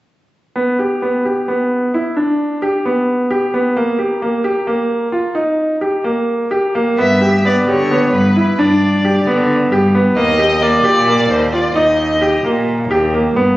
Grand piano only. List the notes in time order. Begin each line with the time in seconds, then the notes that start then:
0.56 B3
0.79 G4
1.02 B3
1.25 G4
1.48 B3
1.94 E4
2.17 D4
2.62 G4
2.85 B3
3.30 G4
3.54 B3
3.77 A#3
3.99 G4
4.22 A#3
4.44 G4
4.67 A#3
5.12 F4
5.35 D#4
5.81 G4
6.04 A#3
6.51 G4
6.75 A#3
6.98 B3
7.21 G4
7.45 B3
7.68 G4
7.91 B3
8.36 E4
8.59 D4
9.05 G4
9.27 B3
9.72 G4
9.95 B3
10.17 A#3
10.39 G4
10.62 A#3
10.84 G4
11.07 A#3
11.53 F4
11.76 D#4
12.21 G4
12.44 A#3
12.91 G4
13.14 A#3
13.36 B3